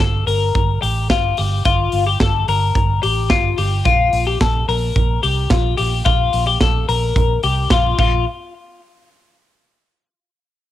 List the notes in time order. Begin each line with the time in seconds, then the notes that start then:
0.00 G1 A4, kick
0.27 G1 A#4, open hi-hat
0.55 G1, kick, closed hi-hat
0.82 A1 G4, open hi-hat
1.10 G1 F4, kick, snare, closed hi-hat
1.37 G1 G4, open hi-hat
1.65 G1 F4, kick, closed hi-hat
1.92 G1, open hi-hat
2.07 G4
2.20 G1 A4, kick, snare, closed hi-hat
2.48 G1 A#4, open hi-hat
2.75 G1, kick, closed hi-hat
3.03 A1 G4, open hi-hat
3.30 G1 F4, kick, snare, closed hi-hat
3.58 G1 G4, open hi-hat
3.85 A#1 F4, kick, closed hi-hat
4.13 A#1, open hi-hat
4.27 G4
4.41 A#1 A4, kick, snare, closed hi-hat
4.69 A#1 A#4, open hi-hat
4.96 A#1, kick, closed hi-hat
5.23 C2 G4, open hi-hat
5.50 A#1 F4, kick, snare, closed hi-hat
5.77 A#1 G4, open hi-hat
6.05 A#1 F4, kick, closed hi-hat
6.33 A#1, open hi-hat
6.47 G4
6.61 A#1 A4, kick, snare, closed hi-hat
6.89 A#1 A#4, open hi-hat
7.16 A#1, kick, closed hi-hat
7.43 C2 G4, open hi-hat
7.70 A#1 F4, kick, snare, closed hi-hat
7.99 A#1 F4, kick, crash